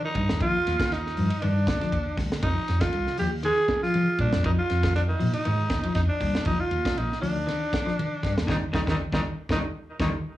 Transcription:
0.05 0.39 D#4 medium
0.15 0.27 G2 medium
0.15 0.30 G3 medium
0.15 kick medium
0.15 ride bell medium
0.29 0.52 D#2 medium
0.29 snare medium
0.40 0.55 F3 medium
0.40 0.94 F4 loud
0.40 kick loud
0.40 ride bell medium
0.67 1.10 D#2 medium
0.67 snare soft
0.67 ride bell medium
0.79 0.94 D#3 medium
0.79 kick medium
0.79 snare medium
0.79 ride bell medium
0.92 1.44 D#4 medium
0.92 snare soft
0.92 ride bell soft
1.07 snare soft
1.17 1.29 G2 medium
1.17 1.31 F3 medium
1.17 open hi-hat medium
1.30 ride bell medium
1.42 1.65 G2 medium
1.42 1.56 D#3 medium
1.42 2.18 D4 medium
1.42 ride bell medium
1.67 1.79 D2 medium
1.67 kick medium
1.67 snare medium
1.67 ride bell medium
1.81 1.95 F3 medium
1.81 muted fingered electric bass stroke soft
1.81 snare soft
1.81 ride bell soft
1.92 2.04 D#2 medium
1.92 kick medium
1.92 ride bell medium
2.17 2.30 D2 medium
2.17 2.31 G3 medium
2.17 kick medium
2.17 snare soft
2.17 open hi-hat medium
2.32 muted fingered electric bass stroke soft
2.32 snare medium
2.43 2.54 F2 loud
2.43 2.57 F3 medium
2.43 2.82 D#4 loud
2.43 kick loud
2.43 ride bell medium
2.57 muted fingered electric bass stroke soft
2.68 2.80 F2 medium
2.68 snare soft
2.68 ride bell medium
2.80 2.95 D#3 medium
2.80 3.18 F4 medium
2.80 kick medium
2.80 snare medium
2.80 ride bell medium
2.92 3.06 C2 loud
2.92 ride bell soft
3.07 snare soft
3.17 3.41 D#2 medium
3.17 3.32 F3 medium
3.17 3.30 G4 medium
3.17 open hi-hat medium
3.43 3.57 D#3 medium
3.43 3.81 G#4 loud
3.43 ride bell medium
3.68 kick medium
3.68 snare medium
3.68 ride bell medium
3.82 3.96 F3 medium
3.82 4.17 F4 loud
3.82 snare soft
3.94 4.07 F3 medium
3.94 ride bell medium
4.18 4.31 A#2 medium
4.18 4.34 G3 medium
4.18 4.43 D4 medium
4.18 kick medium
4.18 ride bell medium
4.33 4.56 F2 medium
4.33 snare medium
4.44 4.59 F3 medium
4.44 4.51 D#4 loud
4.44 kick medium
4.44 ride bell medium
4.59 4.93 F4 loud
4.69 5.14 F2 medium
4.69 snare soft
4.69 ride bell medium
4.83 4.97 D#3 medium
4.83 kick medium
4.83 snare medium
4.83 ride bell medium
4.95 5.02 D4 medium
4.95 snare soft
4.95 ride bell soft
5.09 5.32 D#4 medium
5.20 5.33 A#2 medium
5.20 5.34 F3 medium
5.20 open hi-hat medium
5.33 5.92 D#4 medium
5.33 ride bell medium
5.45 5.68 G#2 medium
5.45 5.59 D#3 medium
5.45 ride bell medium
5.70 5.82 D#2 medium
5.70 kick medium
5.70 snare medium
5.70 ride bell medium
5.84 5.99 F3 medium
5.84 muted fingered electric bass stroke soft
5.84 ride bell medium
5.95 6.08 F2 medium
5.95 6.02 D#4 medium
5.95 kick medium
5.95 snare soft
5.95 ride bell medium
6.09 6.43 D4 medium
6.20 6.33 D#2 medium
6.20 6.35 G3 medium
6.20 kick medium
6.20 open hi-hat medium
6.35 muted fingered electric bass stroke soft
6.35 snare medium
6.45 6.58 D#2 medium
6.45 6.60 F3 medium
6.45 6.61 D#4 loud
6.45 kick medium
6.45 ride bell medium
6.60 6.99 F4 medium
6.60 muted fingered electric bass stroke soft
6.71 6.83 D#2 medium
6.71 ride bell medium
6.85 kick medium
6.85 snare medium
6.85 ride bell medium
6.97 7.09 A#1 medium
6.97 7.21 D#4 medium
6.97 ride bell medium
7.12 snare soft
7.21 7.44 D2 medium
7.21 7.36 F3 medium
7.21 8.44 D4 medium
7.21 open hi-hat medium
7.47 7.61 D#3 loud
7.47 snare soft
7.47 ride bell medium
7.73 kick medium
7.73 snare medium
7.73 ride bell medium
7.86 8.00 F3 medium
7.86 snare soft
7.99 8.10 D#3 medium
7.99 ride bell medium
8.23 8.35 G2 medium
8.23 8.37 G3 medium
8.23 kick medium
8.23 snare soft
8.23 ride bell medium
8.38 8.47 D#2 medium
8.38 snare medium
8.47 8.58 D#2 loud
8.47 8.56 D3 medium
8.47 8.56 D#3 loud
8.47 8.56 G3 medium
8.47 8.56 D#4 loud
8.47 kick medium
8.47 snare medium
8.73 8.84 D#2 loud
8.73 8.82 D3 medium
8.73 8.82 D#3 medium
8.73 8.82 G3 medium
8.73 8.81 D#4 loud
8.73 kick medium
8.73 snare medium
8.87 8.96 D#2 loud
8.87 8.94 D3 medium
8.87 8.94 D#3 medium
8.87 8.94 G3 medium
8.87 8.96 D#4 medium
8.87 kick medium
8.87 snare medium
9.13 9.21 D#2 medium
9.13 9.20 D3 medium
9.13 9.20 D#3 medium
9.13 9.20 G3 medium
9.13 9.20 D#4 medium
9.13 kick medium
9.13 snare medium
9.49 9.59 D#2 medium
9.49 9.58 D3 medium
9.49 9.58 D#3 loud
9.49 9.58 G3 loud
9.49 9.58 D#4 loud
9.49 kick medium
9.49 snare medium
10.00 10.10 D#2 loud
10.00 10.08 D3 medium
10.00 10.08 D#3 loud
10.00 10.08 G3 medium
10.00 10.07 D#4 medium
10.00 kick medium
10.00 snare medium

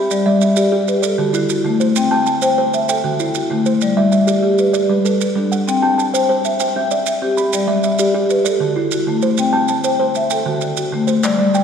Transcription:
0.00 0.11 C4 medium
0.00 0.11 G4 medium
0.00 0.11 E5 medium
0.00 0.42 B5 medium
0.11 0.42 G3 medium
0.11 0.25 D5 medium
0.11 maracas medium
0.26 0.57 G3 medium
0.26 0.56 D5 medium
0.26 0.40 E5 medium
0.41 0.88 E5 medium
0.41 maracas medium
0.56 0.71 G4 medium
0.56 0.88 G4 medium
0.56 1.04 D5 medium
0.56 maracas medium
0.72 1.03 G4 medium
0.88 1.04 B4 medium
0.88 maracas medium
1.02 1.50 A4 medium
1.02 1.34 D5 medium
1.02 maracas medium
1.18 1.50 D3 medium
1.18 1.48 F#4 medium
1.33 1.66 D3 medium
1.33 1.80 E4 medium
1.33 maracas medium
1.49 1.96 F#4 medium
1.49 maracas medium
1.65 1.96 D3 medium
1.65 1.97 A3 medium
1.80 2.27 C5 medium
1.80 maracas medium
1.96 2.27 C4 medium
1.96 2.11 G5 medium
1.96 maracas medium
2.11 2.43 C4 medium
2.11 2.42 G5 medium
2.11 2.25 A5 medium
2.26 2.73 A5 medium
2.26 maracas medium
2.42 2.57 C5 medium
2.42 2.74 C5 medium
2.42 2.89 G5 medium
2.42 maracas medium
2.58 2.89 C5 medium
2.74 2.89 E5 medium
2.74 maracas medium
2.89 3.36 A4 medium
2.89 3.20 G5 medium
2.89 maracas medium
3.04 3.35 D3 medium
3.04 3.34 F#4 medium
3.20 3.51 D3 medium
3.20 3.66 E4 medium
3.20 maracas medium
3.35 3.82 F#4 medium
3.35 maracas medium
3.50 3.82 D3 medium
3.50 3.82 A3 medium
3.66 4.13 C5 medium
3.66 maracas medium
3.81 4.13 G3 medium
3.81 3.96 D5 medium
3.81 maracas medium
3.97 4.28 G3 medium
3.97 4.27 D5 medium
3.97 4.11 E5 medium
4.12 4.59 E5 medium
4.12 maracas medium
4.27 4.41 G4 medium
4.27 4.59 G4 medium
4.27 4.73 D5 medium
4.27 maracas medium
4.43 4.74 G4 medium
4.58 4.89 B4 medium
4.58 maracas soft
4.73 5.20 D5 medium
4.73 5.21 D5 medium
4.73 maracas medium
4.89 5.21 G3 medium
4.89 5.04 B4 medium
5.05 5.52 A4 medium
5.05 5.19 B4 medium
5.05 maracas medium
5.21 5.67 B4 medium
5.21 maracas medium
5.35 5.67 G3 medium
5.35 5.68 D4 medium
5.52 5.98 F#5 medium
5.52 maracas medium
5.67 5.98 C4 medium
5.67 5.81 G5 medium
5.67 maracas medium
5.82 6.14 C4 medium
5.82 6.12 G5 medium
5.82 5.97 A5 medium
5.98 6.44 A5 medium
5.98 maracas medium
6.13 6.45 C5 medium
6.13 6.28 C5 medium
6.13 6.59 G5 medium
6.13 maracas medium
6.29 6.60 C5 medium
6.45 6.75 E5 medium
6.45 maracas medium
6.60 7.06 G5 medium
6.60 maracas medium
6.76 7.07 C4 medium
6.76 6.90 E5 medium
6.91 7.38 D5 medium
6.91 7.05 E5 medium
6.91 maracas medium
7.06 7.53 E5 medium
7.06 maracas medium
7.22 7.53 C4 medium
7.22 7.53 G4 medium
7.37 7.84 B5 medium
7.37 maracas medium
7.53 7.84 G3 medium
7.53 7.68 D5 medium
7.53 maracas medium
7.68 7.99 G3 medium
7.68 7.98 D5 medium
7.68 7.82 E5 medium
7.83 8.30 E5 medium
7.83 maracas medium
7.99 8.13 G4 medium
7.99 8.30 G4 medium
7.99 8.46 D5 medium
7.99 maracas medium
8.14 8.45 G4 medium
8.30 8.46 B4 medium
8.30 maracas medium
8.45 8.92 A4 medium
8.45 8.76 D5 medium
8.45 maracas medium
8.60 8.92 D3 medium
8.60 8.92 F#4 medium
8.76 9.08 D3 medium
8.76 9.23 E4 medium
8.91 9.39 F#4 medium
8.91 maracas medium
9.07 9.38 D3 medium
9.07 9.39 A3 medium
9.22 9.69 C5 medium
9.22 maracas soft
9.38 9.69 C4 medium
9.38 9.53 G5 medium
9.38 maracas medium
9.53 9.84 C4 medium
9.53 9.84 G5 medium
9.53 9.68 A5 medium
9.68 10.15 A5 medium
9.68 maracas medium
9.84 9.98 C5 medium
9.84 10.16 C5 medium
9.84 10.31 G5 medium
9.84 maracas medium
9.99 10.31 C5 medium
10.15 10.31 E5 medium
10.15 maracas medium
10.30 10.78 A4 medium
10.30 10.62 G5 medium
10.30 maracas medium
10.46 10.77 D3 medium
10.46 10.77 F#4 medium
10.61 10.93 D3 medium
10.61 maracas medium
10.77 11.24 F#4 medium
10.77 maracas medium
10.92 11.23 D3 medium
10.92 11.24 A3 medium
11.07 11.54 C5 medium
11.07 maracas soft
11.23 11.55 G3 medium
11.23 11.38 D5 medium
11.23 clap medium
11.23 maracas medium
11.39 11.64 G3 medium
11.39 11.64 D5 medium
11.54 11.64 G5 medium
11.54 clap soft
11.54 maracas medium

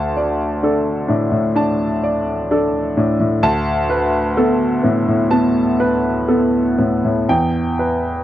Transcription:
0.00 1.52 D2 medium
0.00 0.44 A5 medium
0.17 0.91 D5 soft
0.63 1.00 D4 soft
0.63 1.38 A4 soft
1.08 1.30 A2 medium
1.08 1.46 D4 soft
1.32 1.69 A2 soft
1.55 1.93 D4 medium
1.55 2.30 A5 medium
2.04 2.78 D5 medium
2.51 2.87 D4 medium
2.51 3.26 A4 medium
2.97 3.19 A2 medium
2.97 3.34 D4 medium
3.20 3.43 A2 medium
3.43 5.26 D2 medium
3.43 4.18 A5 medium
3.90 4.65 B4 medium
4.37 4.74 B3 medium
4.37 5.12 A4 medium
4.83 5.07 A2 medium
4.83 5.21 B3 medium
5.08 5.45 A2 medium
5.31 5.69 B3 medium
5.31 6.08 A5 medium
5.80 6.58 B4 medium
6.28 6.68 B3 medium
6.28 7.08 A4 soft
6.78 7.03 A2 soft
6.78 7.18 B3 soft
7.05 7.29 A2 soft
7.29 8.24 E2 medium
7.29 8.09 G5 medium
7.79 8.24 B4 soft

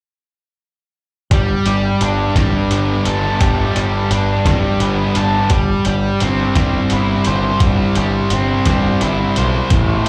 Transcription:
1.31 1.54 G1 medium
1.31 1.67 G3 medium
1.31 kick medium
1.31 closed hi-hat medium
1.66 1.89 G1 medium
1.66 2.37 G3 medium
1.66 closed hi-hat soft
2.01 2.24 G1 medium
2.01 3.77 D4 medium
2.01 closed hi-hat medium
2.35 2.59 G1 medium
2.35 3.41 G3 medium
2.35 kick medium
2.35 snare medium
2.35 closed hi-hat medium
2.71 2.94 G1 medium
2.71 4.46 B3 medium
2.71 closed hi-hat soft
3.05 3.29 G1 medium
3.05 4.81 A4 medium
3.05 closed hi-hat soft
3.41 3.64 G1 medium
3.41 3.76 G3 medium
3.41 kick medium
3.41 closed hi-hat medium
3.76 3.99 G1 medium
3.76 4.46 G3 soft
3.76 closed hi-hat soft
4.11 4.34 G1 medium
4.11 5.52 D4 medium
4.11 closed hi-hat medium
4.45 4.69 G1 medium
4.45 5.50 G3 medium
4.45 kick medium
4.45 snare medium
4.45 closed hi-hat medium
4.80 5.04 G1 medium
4.80 5.51 B3 medium
4.80 closed hi-hat soft
5.15 5.39 G1 medium
5.15 5.51 A4 medium
5.15 closed hi-hat soft
5.50 5.74 G1 medium
5.50 5.85 G3 medium
5.50 kick medium
5.50 closed hi-hat medium
5.85 6.09 G1 medium
5.85 6.56 G3 medium
5.85 closed hi-hat soft
6.20 6.44 G1 medium
6.20 8.32 C4 medium
6.20 closed hi-hat soft
6.55 6.79 G1 medium
6.55 7.61 G3 medium
6.55 kick medium
6.55 snare medium
6.55 closed hi-hat medium
6.90 7.14 G1 medium
6.90 9.01 E4 medium
6.90 closed hi-hat soft
7.25 7.50 G1 medium
7.25 9.37 C5 medium
7.25 closed hi-hat soft
7.60 7.84 G1 medium
7.60 7.96 G3 medium
7.60 kick medium
7.60 closed hi-hat medium
7.95 8.20 G1 medium
7.95 8.66 G3 medium
7.95 closed hi-hat soft
8.30 8.54 G1 medium
8.30 10.09 C4 medium
8.30 closed hi-hat medium
8.66 8.89 G1 medium
8.66 9.72 G3 medium
8.66 kick medium
8.66 snare medium
8.66 closed hi-hat medium
9.01 9.25 G1 medium
9.01 10.09 E4 medium
9.01 closed hi-hat soft
9.36 9.60 B1 medium
9.36 10.09 C5 medium
9.36 closed hi-hat soft
9.70 9.94 A1 medium
9.70 10.09 A2 medium
9.70 kick medium
9.70 closed hi-hat medium

